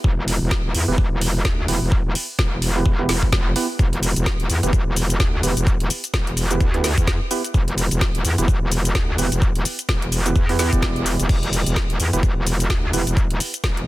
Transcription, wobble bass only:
0.04 0.39 E1 loud
0.41 0.63 E1 loud
0.65 0.73 E1 loud
0.75 0.86 E2 medium
0.88 1.10 E1 medium
1.12 1.43 E1 medium
1.45 1.67 D2 loud
1.68 1.80 E1 loud
1.82 2.03 E1 loud
2.05 2.14 E1 medium
2.39 2.84 E1 loud
2.86 3.07 E1 medium
3.09 3.31 E1 loud
3.32 3.54 F1 medium
3.79 4.14 E1 medium
4.16 4.38 E1 loud
4.40 4.48 E1 loud
4.50 4.61 E2 loud
4.63 4.85 E1 medium
4.87 5.18 E1 loud
5.20 5.42 D2 loud
5.43 5.55 E1 loud
5.57 5.78 E1 loud
5.80 5.89 E1 loud
6.14 6.59 E1 medium
6.61 6.95 D2 medium
6.98 7.19 E2 loud
7.54 7.89 E1 medium
7.91 8.13 E1 loud
8.15 8.23 E1 loud
8.25 8.36 E2 loud
8.38 8.60 E1 medium
8.62 8.93 E1 loud
8.95 9.17 D2 loud
9.18 9.30 E1 loud
9.32 9.53 E1 medium
9.55 9.64 E1 medium
9.89 10.34 E1 medium
10.36 10.70 E2 medium
10.73 11.17 E1 loud
11.20 11.28 E1 loud
11.29 11.64 E1 medium
11.66 11.88 E1 loud
11.90 11.98 E1 loud
12.00 12.11 E2 loud
12.13 12.35 E1 loud
12.37 12.68 E1 loud
12.70 12.92 D2 medium
12.93 13.05 E1 loud
13.07 13.28 E1 loud
13.31 13.39 E1 loud
13.64 13.87 E1 medium

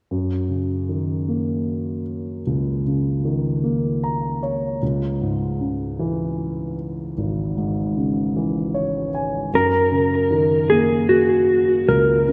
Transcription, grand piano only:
0.11 2.42 F#2 soft
0.49 2.02 C#3 soft
0.89 2.42 D#3 soft
1.28 2.81 A#3 soft
2.47 4.78 C#2 soft
2.86 4.39 C#3 soft
3.25 4.78 D#3 soft
3.64 4.78 A#3 soft
4.04 4.40 A#5 medium
4.43 4.79 C#5 soft
4.83 7.14 C#2 soft
5.21 6.74 G#2 soft
5.60 7.13 C#3 soft
5.99 7.52 E3 soft
7.18 9.49 G#1 soft
7.57 9.10 G#2 soft
7.97 9.49 C#3 soft
8.36 9.50 E3 soft
8.74 9.11 C#5 medium
9.14 9.51 G#5 soft
9.54 11.85 F#2 soft
9.92 11.45 C#3 soft
10.31 11.84 D#3 soft
10.71 12.24 A#3 medium
11.88 12.32 C#2 medium
12.28 12.32 C#3 soft

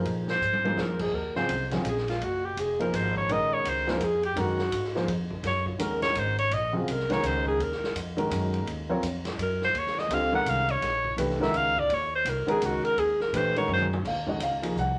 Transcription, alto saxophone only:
0.30 0.82 C5 loud
0.81 1.03 A#4 medium
1.01 1.16 G#4 medium
1.15 1.36 A#4 medium
1.36 1.69 C5 medium
1.89 2.08 G#4 medium
2.09 2.26 F4 medium
2.24 2.46 F#4 medium
2.45 2.61 G4 medium
2.59 2.80 G#4 medium
2.81 2.97 A#4 medium
2.95 3.16 C5 medium
3.17 3.33 C#5 loud
3.32 3.55 D#5 loud
3.54 3.70 C#5 loud
3.69 3.92 C5 loud
3.90 4.06 A#4 medium
4.05 4.25 G#4 medium
4.25 4.42 G4 loud
4.40 4.97 F#4 loud
5.47 5.67 C#5 loud
5.68 5.83 F4 medium
5.82 6.02 A#4 medium
6.02 6.20 C#5 loud
6.19 6.38 C5 loud
6.39 6.55 C#5 loud
6.54 6.75 D#5 loud
6.76 6.92 F#4 medium
6.91 7.13 A#4 medium
7.12 7.28 C#5 loud
7.26 7.47 C5 medium
7.48 7.64 G#4 loud
7.63 7.97 A#4 medium
9.43 9.62 A#4 medium
9.65 9.80 C5 loud
9.79 10.01 C#5 medium
9.99 10.15 D#5 loud
10.14 10.34 F5 loud
10.35 10.51 F#5 loud
10.49 10.72 F5 loud
10.71 11.19 C#5 loud
11.42 11.58 E5 loud
11.57 11.81 F5 loud
11.79 11.95 D5 loud
11.93 12.14 C#5 loud
12.15 12.31 C5 loud
12.29 12.50 A#4 medium
12.50 12.66 G#4 medium
12.65 12.86 F#4 loud
12.84 13.01 A#4 loud
12.99 13.21 G#4 loud
13.21 13.38 A#4 loud
13.37 13.57 C5 loud
13.58 13.69 C#5 loud
13.73 13.86 C5 loud

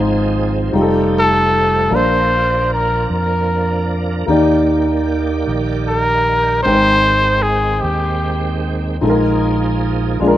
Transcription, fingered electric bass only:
0.00 0.69 G#1 medium
0.73 1.88 F1 medium
1.91 3.05 A#1 medium
3.10 4.24 F2 medium
4.28 5.42 D#2 medium
5.47 6.61 A#1 medium
6.66 7.80 G#1 medium
7.83 8.98 D#2 medium
9.02 10.17 A#1 medium
10.21 10.38 A#1 medium

